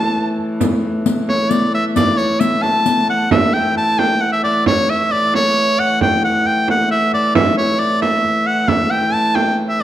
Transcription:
0.00 3.32 A2 medium
0.00 3.32 E3 medium
0.00 0.37 A5 medium
0.16 frame drum soft
0.38 frame drum soft
0.61 riq medium
0.61 frame drum medium
1.06 riq medium
1.06 frame drum soft
1.29 1.53 C#5 medium
1.29 frame drum medium
1.51 1.74 D5 medium
1.51 riq medium
1.51 frame drum soft
1.74 1.84 E5 medium
1.96 2.19 D5 medium
1.96 riq medium
1.96 frame drum medium
2.18 2.41 C#5 medium
2.18 riq soft
2.40 2.64 E5 medium
2.40 riq medium
2.62 3.08 A5 medium
2.62 frame drum medium
2.86 riq medium
2.86 frame drum soft
3.10 3.30 F#5 medium
3.31 8.69 A2 medium
3.31 8.70 E3 medium
3.31 3.55 E5 medium
3.31 frame drum medium
3.54 3.76 G5 medium
3.54 frame drum soft
3.76 4.00 A5 medium
3.76 frame drum soft
3.99 4.23 G5 loud
3.99 frame drum medium
4.21 4.32 F#5 medium
4.32 4.43 E5 medium
4.43 4.64 D5 medium
4.43 frame drum soft
4.66 4.91 C#5 medium
4.66 frame drum medium
4.89 5.13 E5 medium
4.89 frame drum soft
5.11 5.33 D5 medium
5.11 frame drum soft
5.34 5.81 C#5 loud
5.34 frame drum medium
5.79 6.01 F#5 medium
5.79 frame drum soft
6.01 6.22 G5 medium
6.01 frame drum medium
6.23 6.48 F#5 medium
6.23 frame drum soft
6.45 6.68 G5 medium
6.45 frame drum soft
6.68 6.90 F#5 medium
6.68 frame drum medium
6.91 7.11 E5 medium
7.13 7.34 D5 medium
7.13 frame drum soft
7.35 7.56 E5 medium
7.35 frame drum medium
7.58 7.81 C#5 medium
7.79 8.01 D5 medium
8.02 8.48 E5 medium
8.02 frame drum medium
8.25 frame drum soft
8.47 8.70 F#5 medium
8.68 9.83 A2 medium
8.68 9.83 E3 medium
8.68 8.92 E5 medium
8.68 frame drum medium
8.91 9.15 G5 medium
8.91 frame drum soft
9.13 9.37 A5 medium
9.13 frame drum soft
9.35 9.58 G5 medium
9.35 frame drum medium
9.69 9.82 E5 medium

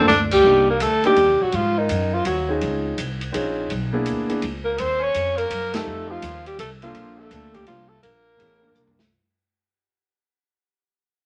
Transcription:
0.08 0.43 D2 medium
0.08 0.22 D4 loud
0.08 snare medium
0.31 0.65 G3 medium
0.31 0.66 G4 loud
0.31 kick medium
0.31 crash medium
0.44 0.79 C2 medium
0.44 0.65 A#3 medium
0.44 0.66 C4 soft
0.44 0.66 D4 soft
0.44 0.66 D#4 soft
0.44 0.67 G4 medium
0.70 0.83 A#3 medium
0.70 0.84 A#4 medium
0.80 1.15 D2 medium
0.80 1.04 A3 medium
0.80 1.05 A4 loud
0.80 hi-hat pedal medium
0.80 ride medium
1.04 1.43 G3 medium
1.04 1.15 A#3 medium
1.04 1.16 C4 medium
1.04 1.16 D4 medium
1.04 1.16 D#4 medium
1.04 1.16 G4 medium
1.04 1.43 G4 loud
1.04 ride soft
1.16 1.31 D#2 medium
1.16 ride medium
1.30 1.41 C2 medium
1.41 1.52 A#1 medium
1.41 1.56 F#3 medium
1.41 1.57 F#4 medium
1.52 1.88 G#2 medium
1.52 1.80 F3 medium
1.52 1.80 F4 medium
1.52 ride medium
1.78 2.16 D#3 medium
1.78 2.16 D#4 medium
1.89 2.25 F#2 medium
1.89 hi-hat pedal soft
1.89 ride medium
2.14 2.26 F3 medium
2.14 2.25 F4 medium
2.25 2.61 D#2 medium
2.25 2.54 F#3 medium
2.25 2.53 F#4 medium
2.25 ride medium
2.48 2.95 C4 medium
2.48 2.96 C#4 medium
2.48 2.96 D#4 medium
2.48 2.96 F4 medium
2.48 2.96 G#4 medium
2.61 2.97 C#2 medium
2.61 ride soft
2.98 3.33 C2 medium
2.98 hi-hat pedal soft
2.98 ride medium
3.21 ride medium
3.32 3.70 A#1 medium
3.32 3.69 C4 medium
3.32 3.69 C#4 medium
3.32 3.70 D#4 medium
3.32 3.70 F4 medium
3.32 3.70 G#4 medium
3.32 ride medium
3.70 4.06 B1 medium
3.70 ride medium
3.92 4.27 A#3 medium
3.92 4.27 B3 medium
3.92 4.27 D4 medium
3.92 4.27 E4 medium
3.92 4.28 G#4 medium
4.06 4.42 D2 medium
4.06 hi-hat pedal soft
4.06 ride medium
4.28 4.41 A#3 medium
4.28 4.41 B3 medium
4.28 4.41 D4 medium
4.28 4.41 E4 medium
4.28 4.41 G#4 medium
4.28 ride medium
4.42 4.78 C#2 medium
4.42 ride medium
4.65 4.79 A#3 medium
4.65 4.81 A#4 medium
4.78 5.14 D#2 medium
4.78 5.02 C4 loud
4.78 5.04 C5 loud
4.78 ride medium
5.00 5.38 C#4 medium
5.00 5.39 C#5 loud
5.14 5.50 F2 medium
5.14 hi-hat pedal medium
5.14 ride medium
5.36 5.75 A#3 medium
5.36 5.77 A#4 loud
5.36 ride medium
5.50 5.86 F#2 medium
5.50 ride medium
5.74 6.10 A3 medium
5.74 6.21 A3 medium
5.74 6.21 C4 medium
5.74 6.21 D#4 medium
5.74 6.21 F4 medium
5.74 6.22 G4 medium
5.74 6.13 A4 medium
5.74 snare medium
5.74 ride medium
5.87 6.22 F2 medium
6.09 6.46 F3 medium
6.09 6.46 F4 medium
6.22 6.58 D#2 medium
6.22 hi-hat pedal medium
6.22 ride medium
6.46 6.59 G3 medium
6.46 6.59 G4 medium
6.46 ride soft
6.58 6.94 C2 loud
6.58 6.70 A3 medium
6.58 6.70 A4 loud
6.58 hi-hat pedal medium
6.58 ride medium
6.82 7.20 F3 medium
6.82 7.29 A#3 medium
6.82 7.29 C4 medium
6.82 7.29 D4 medium
6.82 7.21 F4 medium
6.82 7.30 F4 medium
6.82 7.30 A4 medium
6.82 ride soft
6.95 7.30 A#1 medium
6.95 ride medium
7.19 7.57 A3 medium
7.19 7.56 A4 loud
7.30 7.66 D2 medium
7.30 7.86 A#3 medium
7.30 7.86 C4 medium
7.30 7.87 D4 medium
7.30 7.87 F4 medium
7.30 7.87 A4 medium
7.30 hi-hat pedal medium
7.30 ride medium
7.54 7.67 G3 medium
7.54 7.67 G4 medium
7.54 kick medium
7.54 ride medium
7.67 8.02 C2 medium
7.67 7.92 F3 medium
7.67 7.90 F4 medium
7.67 ride medium
7.88 8.02 A3 medium
7.88 8.03 A4 medium
8.03 8.38 A#1 medium
8.03 8.95 A#3 medium
8.03 8.95 A#4 loud
8.03 ride medium
8.37 8.74 A1 loud
8.37 8.59 A3 medium
8.37 8.60 B3 medium
8.37 8.60 C#4 medium
8.37 8.60 E4 medium
8.37 8.61 G#4 medium
8.37 ride medium
8.62 8.94 A#3 medium
8.62 8.94 C4 medium
8.62 8.94 D4 medium
8.62 8.95 F4 medium
8.62 8.95 A#4 medium
8.75 9.10 C2 medium
8.75 hi-hat pedal medium
8.87 floor tom medium
8.99 snare medium

